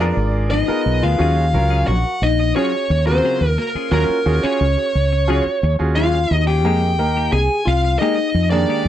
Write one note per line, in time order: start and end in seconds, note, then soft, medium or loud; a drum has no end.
0.00 0.11 F2 medium
0.00 0.17 F3 medium
0.00 0.18 B3 medium
0.00 0.51 D4 medium
0.00 0.49 D4 loud
0.00 0.18 D4 medium
0.00 0.49 F4 medium
0.00 0.49 G#4 medium
0.00 0.18 G#4 medium
0.00 0.49 A#4 loud
0.00 0.50 D5 medium
0.17 0.62 G#1 medium
0.17 muted clean electric guitar stroke soft
0.51 0.69 F3 medium
0.51 0.69 B3 medium
0.51 0.69 D4 medium
0.51 1.00 D#4 medium
0.51 0.69 G#4 medium
0.51 1.04 D#5 medium
0.68 1.20 B3 medium
0.68 1.17 F4 medium
0.68 1.18 G#4 medium
0.68 1.20 A#4 medium
0.68 muted fretless electric bass stroke soft
0.68 muted clean electric guitar stroke soft
0.86 1.01 B1 medium
0.86 muted clean electric guitar stroke soft
1.03 1.18 D2 medium
1.03 1.20 B3 soft
1.03 1.20 D4 soft
1.03 1.84 F4 medium
1.03 1.20 G#4 soft
1.03 1.87 F5 medium
1.18 1.55 D#2 medium
1.18 1.37 F#3 medium
1.18 1.44 C#4 medium
1.18 1.36 C#4 medium
1.18 1.44 F4 medium
1.18 1.36 F4 medium
1.18 1.44 F#4 medium
1.18 1.44 G#4 medium
1.18 1.36 G#4 medium
1.37 muted clean electric guitar stroke soft
1.53 1.84 C#2 medium
1.53 1.90 F#3 medium
1.53 1.90 C#4 medium
1.53 1.90 F4 medium
1.53 1.90 A#4 medium
1.53 muted clean electric guitar stroke soft
1.70 1.87 C#4 soft
1.70 1.87 F4 soft
1.70 1.88 G#4 soft
1.87 2.03 A#1 medium
1.87 2.20 F#4 medium
1.87 2.23 F#5 medium
1.87 muted clean electric guitar stroke soft
2.05 2.13 F#4 soft
2.05 2.14 A#4 soft
2.22 2.52 A#1 medium
2.22 2.54 D#4 medium
2.22 2.55 D#5 medium
2.39 muted clean electric guitar stroke soft
2.56 2.73 F#3 medium
2.56 2.68 C#4 medium
2.56 2.73 C#4 medium
2.56 3.04 C#4 medium
2.56 2.68 F4 medium
2.56 2.72 F4 medium
2.56 2.69 F#4 medium
2.56 2.69 G#4 medium
2.56 2.72 G#4 medium
2.56 3.06 C#5 medium
2.74 2.82 F#4 soft
2.74 2.82 G#4 soft
2.74 muted clean electric guitar stroke soft
2.90 3.20 D#2 medium
2.90 muted clean electric guitar stroke soft
3.06 3.43 C#3 medium
3.06 3.55 C4 medium
3.06 3.43 F4 medium
3.06 3.43 F#4 medium
3.06 3.43 A#4 medium
3.06 3.49 C5 medium
3.24 3.42 F#3 medium
3.24 3.41 C#4 medium
3.24 3.41 F4 medium
3.24 3.41 G#4 medium
3.41 3.56 D#2 medium
3.41 muted clean electric guitar stroke soft
3.49 3.58 A#4 medium
3.58 3.90 A#3 medium
3.58 3.67 F#4 soft
3.58 3.91 A#4 medium
3.58 3.67 A#4 soft
3.58 muted clean electric guitar stroke soft
3.75 3.92 C#4 soft
3.75 3.92 F4 soft
3.75 3.92 G#4 medium
3.75 muted fretless electric bass stroke soft
3.91 4.07 D#2 medium
3.91 4.10 F#3 medium
3.91 4.41 A#3 medium
3.91 4.16 C#4 medium
3.91 4.10 C#4 medium
3.91 4.16 F4 medium
3.91 4.09 F4 medium
3.91 4.16 F#4 medium
3.91 4.09 G#4 medium
3.91 4.16 A#4 medium
3.91 4.45 A#4 medium
4.09 muted fretless electric bass stroke soft
4.09 muted clean electric guitar stroke soft
4.26 4.41 D#2 medium
4.26 4.62 C#4 medium
4.26 4.62 F4 medium
4.26 4.63 F#4 medium
4.26 4.62 G#4 medium
4.26 muted clean electric guitar stroke soft
4.43 5.76 C#4 medium
4.43 4.60 C#4 soft
4.43 4.60 F4 soft
4.43 4.61 G#4 soft
4.43 5.76 C#5 medium
4.43 muted fretless electric bass stroke soft
4.61 4.76 C#2 medium
4.61 muted clean electric guitar stroke soft
4.77 4.86 F#4 soft
4.77 4.86 G#4 soft
4.95 5.40 C#2 medium
5.12 muted clean electric guitar stroke soft
5.28 5.46 F#3 medium
5.28 5.40 C#4 medium
5.28 5.46 C#4 medium
5.28 5.40 F4 medium
5.28 5.46 F4 medium
5.28 5.41 F#4 medium
5.28 5.40 G#4 medium
5.28 5.46 G#4 medium
5.46 5.54 F#4 soft
5.46 5.54 G#4 soft
5.46 muted fretless electric bass stroke soft
5.63 5.78 D#2 medium
5.63 muted clean electric guitar stroke soft
5.79 6.24 D#2 medium
5.79 6.16 C#4 medium
5.79 6.16 F4 medium
5.79 6.16 F#4 medium
5.79 6.16 G#4 medium
5.95 6.14 F#3 soft
5.95 6.14 C#4 medium
5.95 6.44 F4 medium
5.95 6.14 F4 medium
5.95 6.13 G#4 medium
5.95 6.44 F5 medium
6.14 muted clean electric guitar stroke soft
6.31 6.65 D#2 medium
6.31 6.39 F#4 soft
6.31 6.39 A#4 soft
6.31 muted clean electric guitar stroke soft
6.47 6.66 C#4 soft
6.47 6.65 F4 soft
6.47 7.28 G4 medium
6.47 6.65 G#4 soft
6.47 7.32 G5 medium
6.64 6.99 F2 medium
6.64 6.82 G#3 medium
6.64 6.89 A#3 medium
6.64 6.82 A#3 medium
6.64 6.89 D#4 medium
6.64 6.82 D#4 medium
6.64 6.89 G4 medium
6.64 6.81 G4 medium
6.64 6.89 G#4 medium
6.82 muted clean electric guitar stroke soft
6.99 7.28 D#2 medium
6.99 7.35 A#3 medium
6.99 7.35 D#4 medium
6.99 7.35 G4 medium
6.99 7.35 A#4 medium
6.99 muted clean electric guitar stroke soft
7.17 7.32 A#3 soft
7.17 7.33 D#4 soft
7.17 7.33 G4 medium
7.32 7.48 C2 medium
7.32 7.64 G#4 medium
7.32 7.68 G#5 medium
7.32 muted clean electric guitar stroke soft
7.50 7.58 G4 soft
7.50 7.58 G#4 soft
7.65 7.96 C2 medium
7.65 7.98 F4 medium
7.65 7.98 F5 medium
7.84 muted clean electric guitar stroke soft
7.99 8.18 G#3 medium
7.99 8.13 A#3 medium
7.99 8.18 A#3 medium
7.99 8.48 D#4 medium
7.99 8.13 D#4 medium
7.99 8.18 D#4 medium
7.99 8.13 G4 medium
7.99 8.17 G4 medium
7.99 8.13 G#4 medium
7.99 8.50 D#5 medium
8.18 8.26 G4 soft
8.18 8.26 G#4 soft
8.18 muted clean electric guitar stroke soft
8.34 8.64 F2 medium
8.34 muted clean electric guitar stroke soft
8.50 8.88 D#3 medium
8.50 8.88 A#3 medium
8.50 8.88 D4 medium
8.50 8.88 G4 medium
8.50 8.88 G#4 medium
8.50 8.88 D5 medium
8.69 8.86 G#3 medium
8.69 8.85 A#3 medium
8.69 8.85 D#4 medium
8.69 8.85 G4 medium